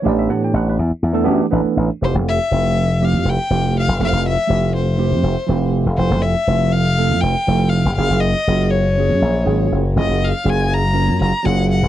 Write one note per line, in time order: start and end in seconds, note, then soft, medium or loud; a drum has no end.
0.02 0.28 A1 medium
0.02 0.76 E3 medium
0.02 0.77 A3 medium
0.02 0.77 B3 medium
0.02 0.77 D4 medium
0.02 0.78 G4 medium
0.09 0.19 D5 medium
0.19 0.30 E5 medium
0.29 0.53 A2 medium
0.29 0.42 F#5 medium
0.44 0.55 G5 medium
0.54 0.77 A1 loud
0.54 0.67 F#5 medium
0.69 0.76 B4 medium
0.79 0.91 E2 medium
0.91 muted slap bass stroke soft
1.03 1.26 E2 medium
1.12 1.23 E3 medium
1.12 1.23 A3 medium
1.12 1.23 B3 medium
1.12 1.24 D4 medium
1.12 1.24 A4 loud
1.24 1.40 F#2 medium
1.24 1.45 E3 medium
1.24 1.45 A3 medium
1.24 1.45 B3 medium
1.24 1.45 D4 medium
1.24 1.45 G4 loud
1.50 1.64 A1 medium
1.50 1.88 E3 medium
1.50 1.88 A3 medium
1.50 1.89 B3 medium
1.50 1.89 D4 medium
1.50 1.89 A4 medium
1.77 1.89 A1 medium
2.01 2.14 F1 medium
2.01 2.38 F3 medium
2.01 2.38 A3 medium
2.01 2.39 C4 medium
2.01 2.39 E4 medium
2.01 2.39 G4 medium
2.01 2.15 C5 medium
2.14 2.38 F1 medium
2.29 3.06 E5 medium
2.51 3.15 F1 medium
2.51 2.88 F3 medium
2.51 2.88 A3 medium
2.51 2.88 C4 medium
2.51 2.88 E4 medium
2.51 2.88 A4 medium
3.00 3.37 F3 medium
3.00 3.37 A3 medium
3.00 3.38 C4 medium
3.00 3.38 E4 medium
3.00 3.38 G4 medium
3.04 3.31 F5 medium
3.13 3.24 F2 medium
3.25 3.37 F1 medium
3.30 3.77 G5 medium
3.50 3.85 F1 medium
3.50 3.87 F3 medium
3.50 3.87 A3 medium
3.50 3.88 C4 medium
3.50 3.87 E4 medium
3.50 3.88 G4 medium
3.80 4.01 F5 medium
3.88 3.99 F1 medium
3.99 4.12 F1 medium
3.99 4.36 F3 medium
3.99 4.36 A3 medium
3.99 4.37 C4 medium
3.99 4.37 E4 medium
3.99 4.37 A4 medium
3.99 4.25 F5 medium
4.12 4.36 F1 medium
4.28 4.73 E5 medium
4.47 5.13 F1 medium
4.47 4.85 F3 medium
4.47 4.85 A3 medium
4.47 4.86 C4 medium
4.47 4.86 E4 medium
4.47 4.86 G4 medium
4.76 5.70 C5 medium
4.97 5.35 F3 medium
4.97 5.35 A3 medium
4.97 5.35 C4 medium
4.97 5.36 E4 medium
4.97 5.36 G4 medium
5.12 5.22 F2 medium
5.23 5.35 F1 medium
5.47 5.84 F1 medium
5.47 5.84 F3 medium
5.47 5.85 A3 medium
5.47 5.85 C4 medium
5.47 5.85 E4 medium
5.47 5.85 G4 medium
5.86 5.97 F1 medium
5.97 6.10 F1 medium
5.97 6.35 F3 medium
5.97 6.35 A3 medium
5.97 6.35 C4 medium
5.97 6.35 E4 medium
5.97 6.35 A4 medium
5.97 6.24 C5 medium
6.10 6.34 F1 medium
6.22 6.73 E5 medium
6.47 7.12 F1 medium
6.47 6.84 F3 medium
6.47 6.85 A3 medium
6.47 6.85 C4 medium
6.47 6.85 E4 medium
6.47 6.85 A4 medium
6.72 7.22 F5 loud
6.97 7.34 F3 medium
6.97 7.35 A3 medium
6.97 7.34 C4 medium
6.97 7.35 E4 medium
6.97 7.35 A4 medium
7.10 7.22 F2 medium
7.21 7.34 F1 medium
7.21 7.71 G5 loud
7.47 7.82 F1 medium
7.47 7.84 F3 medium
7.47 7.84 A3 medium
7.47 7.84 C4 medium
7.47 7.85 E4 medium
7.47 7.85 A4 medium
7.69 7.96 F5 medium
7.85 7.96 F1 medium
7.96 8.09 F#1 medium
7.96 8.34 F#3 medium
7.96 8.34 A#3 medium
7.96 8.35 C#4 medium
7.96 8.35 F4 medium
7.96 8.35 G#4 medium
7.96 8.22 F5 medium
8.10 8.33 F#1 medium
8.20 8.73 D#5 medium
8.47 9.11 F#1 medium
8.47 8.83 F#3 medium
8.47 8.84 A#3 medium
8.47 8.84 C#4 medium
8.47 8.84 F4 medium
8.47 8.85 G#4 medium
8.71 9.70 C#5 medium
8.98 9.34 F#3 medium
8.98 9.34 A#3 medium
8.98 9.34 C#4 medium
8.98 9.34 F4 medium
8.98 9.34 G#4 medium
9.09 9.21 F#2 medium
9.22 9.44 A#1 medium
9.45 9.68 G#1 medium
9.45 9.82 F#3 medium
9.45 9.82 A#3 medium
9.45 9.82 C#4 medium
9.45 9.82 F4 medium
9.45 9.82 G#4 medium
9.72 9.93 F#1 medium
9.95 10.07 F#1 medium
9.95 10.32 F#3 medium
9.95 10.32 A#3 medium
9.95 10.32 C#4 medium
9.95 10.33 F4 medium
9.95 10.33 G#4 medium
9.99 10.26 D#5 medium
10.09 10.31 F#1 medium
10.25 10.51 F5 medium
10.44 11.10 F#1 medium
10.44 10.81 F#3 medium
10.44 10.81 A#3 medium
10.44 10.82 C#4 medium
10.44 10.82 F4 medium
10.44 10.82 G#4 medium
10.49 10.75 G#5 medium
10.73 11.21 A#5 loud
10.93 11.30 F#3 medium
10.93 11.31 A#3 medium
10.93 11.31 C#4 medium
10.93 11.31 F4 medium
10.93 11.32 A#4 medium
11.08 11.19 F#2 medium
11.21 11.32 F#1 medium
11.21 11.47 A#5 medium
11.43 11.80 F#1 medium
11.43 11.80 F#3 medium
11.43 11.80 A#3 medium
11.43 11.81 C#4 medium
11.43 11.81 F4 medium
11.43 11.81 G#4 medium
11.43 11.70 F#5 medium
11.72 11.88 F#5 medium
11.83 11.88 F#1 medium